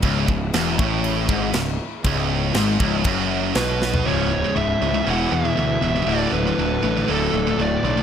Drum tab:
CC |x---x---x---x---|x---x---x---x---|----------------|----------------|
SD |----o-------o---|----o-------o-o-|----------------|----------------|
FT |----------------|---------------o|----------------|----------------|
BD |o-o---o---o-----|o-----o-o-------|----------------|----------------|